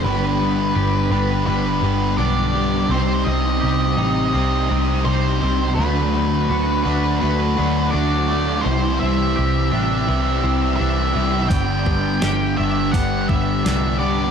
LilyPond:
<<
  \new Staff \with { instrumentName = "Lead electric guitar" } { \time 4/4 \key g \major \tempo 4 = 84 b'4. b'8 b'4 d''4 | c''8 ees''2~ ees''8 c''4 | b'4. b'8 b'4 d''4 | c''8 e''2~ e''8 e''4 |
g''4. e''8 fis''8 e''4 d''8 | }
  \new Staff \with { instrumentName = "Overdriven electric guitar" } { \time 4/4 \key g \major <g, d g b d' g'>4. <g b d' g'>8 <g b d' g'>8 <g b d' g'>8 <g b d' g'>8 <g b d' g'>8 | <c g c' ees' g'>4. <c' ees' g'>8 <g c' ees' g'>8 <c' ees' g'>8 <g c' ees' g'>8 <c' ees' g'>8 | <d fis a d' fis'>4. <a d' fis'>8 <fis a d' fis'>8 <a d' fis'>8 <fis a d' fis'>8 <a d' fis'>8 | <c e g e' g'>4. <g e' g'>8 <e g e' g'>8 <g e' g'>8 <e g e' g'>8 <g e' g'>8 |
<g, d g b d' g'>4. <g b d' g'>8 <g b d' g'>8 <g b d' g'>8 <g b d' g'>8 <g b d' g'>8 | }
  \new Staff \with { instrumentName = "Clean electric guitar" } { \time 4/4 \key g \major g8 b8 g'8 d'8 g8 b8 d'8 g8 | c'8 c'8 g'8 ees'8 c'8 c'8 ees'8 c'8 | a8 a8 fis'8 d'8 a8 a8 d'8 a8 | e8 c'8 g'8 d'8 e8 c'8 d'8 e8 |
b8 b8 g'8 d'8 b8 b8 d'8 b8 | }
  \new Staff \with { instrumentName = "Distorted electric guitar" } { \clef bass \time 4/4 \key g \major <g, d g>8 <d g>8 <g, d g>8 <d g>8 <g, d g>8 <d g>8 <g, d g>8 <d g>8 | <c g c'>8 <g c'>8 <c g c'>8 <g c'>8 <c g c'>8 <g c'>8 <c g c'>8 <g c'>8 | <d a d'>8 <a d'>8 <d a d'>8 <a d'>8 <d a d'>8 <a d'>8 <d a d'>8 <a d'>8 | <c g c'>8 <g c'>8 <c g c'>8 <g c'>8 <c g c'>8 <g c'>8 <c g c'>8 <g c'>8 |
<g, d g>8 <d g>8 <g, d g>8 <d g>8 <g, d g>8 <d g>8 <g, d g>8 <d g>8 | }
  \new Staff \with { instrumentName = "Picked electric bass" } { \clef bass \time 4/4 \key g \major g,,4 g,,8 g,,8 g,,8 g,,8 b,,4 | c,8 c,8 c,8 a,,8 c,8 c,8 c,8 c,8 | d,4 d,8 d,8 d,8 d,8 d,4 | c,8 c,8 c,8 a,,8 c,8 c,8 c,8 c,8 |
g,,4 g,,8 g,,8 g,,8 g,,8 c,4 | }
  \new DrumStaff \with { instrumentName = "Drums" } \drummode { \time 4/4 r4 r4 r4 r4 | r4 r4 r4 r4 | r4 r4 r4 r4 | r4 r4 r4 r4 |
<hho bd>8 bd8 <hho sn>4 <hho bd>8 bd8 <hho sn>4 | }
>>